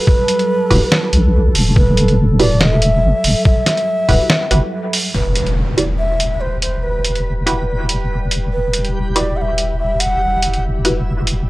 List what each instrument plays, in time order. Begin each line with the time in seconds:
Already playing: analog synth pad F#3 G3 A4, ney B4
0.07 kick
0.28 closed hi-hat
0.39 closed hi-hat
0.70 wobble bass D1, synth stab E4 F#4 G4 B4, kick, open hi-hat
0.92 snare
1.13 wobble bass B1, closed hi-hat
1.55 wobble bass E1, open hi-hat
1.76 wobble bass E1, ney B4, kick
1.97 closed hi-hat
2.08 closed hi-hat
2.39 wobble bass D1, synth stab E4 F#4 G4 B4, ney D5, open hi-hat
2.61 wobble bass E1, ney D#5, snare
2.72 ney E5
2.82 closed hi-hat
3.03 wobble bass G1
3.24 wobble bass E1, open hi-hat
3.45 ney E5, kick
3.66 snare, closed hi-hat
3.77 closed hi-hat
4.09 wobble bass D1, synth stab E4 F#4 G4 B4, kick, open hi-hat
4.30 snare
4.51 wobble bass G1, synth stab E4 F#4 G4 B4, closed hi-hat
4.93 open hi-hat
5.14 wobble bass E1, analog synth pad G3 F#4 E5, synth texture G3 B4, ney B4, impact
5.35 closed hi-hat
5.46 closed hi-hat
5.77 synth stab E4 F#4 G4 B4, ney D5, closed hi-hat
5.98 ney E5
6.20 closed hi-hat
6.41 ney C5
6.62 ney C5, closed hi-hat
6.83 ney B4
7.04 closed hi-hat
7.15 closed hi-hat
7.46 synth stab E4 F#4 G4 B4, closed hi-hat
7.89 closed hi-hat
8.31 closed hi-hat
8.52 synth texture E4, ney B4
8.73 closed hi-hat
8.85 closed hi-hat
9.16 synth stab E4 F#4 G4 B4, ney D5, closed hi-hat
9.37 ney F#5
9.42 ney E5
9.58 closed hi-hat
9.79 ney E5
10.00 ney F#5, closed hi-hat
10.43 closed hi-hat
10.54 closed hi-hat
10.85 synth stab E4 F#4 G4 B4, closed hi-hat
11.27 closed hi-hat